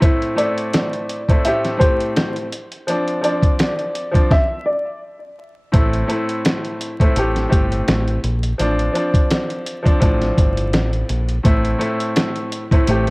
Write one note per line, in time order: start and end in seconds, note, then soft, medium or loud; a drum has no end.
0.00 0.34 A2 medium
0.00 0.35 A3 medium
0.00 0.35 C4 medium
0.00 0.36 E4 loud
0.00 kick loud
0.00 closed hi-hat medium
0.22 closed hi-hat soft
0.35 1.20 A2 medium
0.35 1.20 A3 medium
0.35 1.21 C4 medium
0.35 1.21 E4 medium
0.35 1.41 D5 medium
0.35 closed hi-hat medium
0.58 closed hi-hat medium
0.73 snare loud
0.73 snare medium
0.73 closed hi-hat loud
0.93 closed hi-hat soft
1.09 closed hi-hat medium
1.28 1.43 A2 medium
1.28 1.44 A3 medium
1.28 1.45 C4 medium
1.28 1.46 E4 medium
1.28 kick medium
1.28 closed hi-hat medium
1.45 1.76 A2 loud
1.45 1.77 A3 medium
1.45 1.78 C4 medium
1.45 1.78 G4 loud
1.45 1.77 E5 medium
1.45 closed hi-hat loud
1.65 snare soft
1.65 closed hi-hat soft
1.77 2.45 A2 medium
1.77 2.46 A3 medium
1.77 2.46 C4 medium
1.77 2.47 G4 loud
1.77 2.32 C5 medium
1.77 kick medium
1.77 closed hi-hat medium
2.00 closed hi-hat medium
2.16 snare loud
2.16 snare medium
2.16 closed hi-hat medium
2.36 closed hi-hat soft
2.52 closed hi-hat medium
2.72 closed hi-hat soft
2.87 3.20 F3 medium
2.87 3.21 C4 medium
2.87 3.22 D4 loud
2.87 closed hi-hat medium
3.08 closed hi-hat soft
3.21 4.06 F3 medium
3.21 4.06 C4 medium
3.21 4.07 D4 loud
3.21 4.27 D5 medium
3.21 closed hi-hat medium
3.42 kick medium
3.42 closed hi-hat medium
3.59 snare loud
3.59 snare medium
3.59 closed hi-hat medium
3.79 closed hi-hat soft
3.95 closed hi-hat medium
4.11 4.31 F3 medium
4.11 4.32 C4 medium
4.11 4.33 D4 loud
4.11 kick medium
4.11 closed hi-hat medium
4.31 4.63 E5 medium
4.31 kick loud
4.31 snare medium
4.66 4.98 D5 medium
5.72 6.02 A1 loud
5.72 6.05 A2 medium
5.72 6.06 A3 medium
5.72 6.07 C4 medium
5.72 6.07 E4 loud
5.72 kick loud
5.72 closed hi-hat medium
5.93 closed hi-hat soft
6.07 6.91 A2 medium
6.07 6.92 A3 medium
6.07 6.92 C4 medium
6.07 6.93 E4 loud
6.07 closed hi-hat medium
6.29 closed hi-hat medium
6.45 snare loud
6.45 snare medium
6.45 closed hi-hat loud
6.65 closed hi-hat soft
6.81 closed hi-hat medium
7.00 7.15 A2 medium
7.00 7.16 A3 medium
7.00 7.17 C4 medium
7.00 7.17 E4 medium
7.00 kick medium
7.00 closed hi-hat medium
7.16 7.45 A1 medium
7.16 7.47 A2 medium
7.16 7.48 A3 medium
7.16 7.49 C4 medium
7.16 7.50 G4 loud
7.16 closed hi-hat loud
7.36 snare soft
7.36 closed hi-hat soft
7.49 7.80 G1 medium
7.49 8.17 A2 medium
7.49 8.17 A3 medium
7.49 8.18 C4 medium
7.49 8.18 G4 loud
7.49 kick medium
7.49 closed hi-hat medium
7.72 closed hi-hat medium
7.88 8.16 A1 medium
7.88 snare loud
7.88 snare medium
7.88 closed hi-hat medium
8.08 closed hi-hat soft
8.24 8.52 A#1 medium
8.24 closed hi-hat medium
8.43 closed hi-hat medium
8.58 8.88 A1 loud
8.58 8.91 F3 medium
8.58 8.92 C4 medium
8.58 8.93 D4 loud
8.58 closed hi-hat medium
8.79 closed hi-hat soft
8.93 9.77 F3 medium
8.93 9.78 C4 medium
8.93 9.78 D4 loud
8.93 closed hi-hat medium
9.14 kick loud
9.14 closed hi-hat medium
9.31 snare loud
9.31 snare medium
9.31 closed hi-hat loud
9.50 closed hi-hat soft
9.66 closed hi-hat medium
9.83 9.99 F3 medium
9.83 10.00 C4 medium
9.83 10.01 D4 loud
9.83 kick medium
9.83 closed hi-hat medium
10.00 10.30 A1 loud
10.00 11.33 A2 loud
10.00 11.34 F3 medium
10.00 11.34 C4 medium
10.00 11.35 D4 loud
10.00 kick medium
10.00 closed hi-hat loud
10.22 snare soft
10.22 closed hi-hat soft
10.38 10.74 G1 medium
10.38 kick medium
10.38 closed hi-hat medium
10.57 closed hi-hat medium
10.73 11.02 A1 loud
10.73 snare loud
10.73 snare medium
10.73 closed hi-hat medium
10.93 closed hi-hat soft
11.09 11.38 A#1 medium
11.09 closed hi-hat medium
11.29 closed hi-hat medium
11.43 11.73 A1 loud
11.43 11.77 A2 medium
11.43 11.78 A3 medium
11.43 11.78 C4 medium
11.43 11.79 E4 loud
11.43 kick loud
11.43 closed hi-hat medium
11.65 closed hi-hat soft
11.78 12.63 A2 medium
11.78 12.63 A3 medium
11.78 12.63 C4 medium
11.78 12.64 E4 loud
11.78 closed hi-hat medium
12.00 closed hi-hat medium
12.16 snare loud
12.16 snare medium
12.16 closed hi-hat loud
12.36 closed hi-hat soft
12.52 closed hi-hat medium
12.71 12.86 A2 medium
12.71 12.87 A3 medium
12.71 12.88 C4 medium
12.71 12.89 E4 loud
12.71 kick medium
12.71 closed hi-hat medium
12.87 13.10 A1 loud
12.87 13.10 A2 loud
12.87 13.10 A3 medium
12.87 13.10 C4 medium
12.87 13.10 G4 loud
12.87 closed hi-hat loud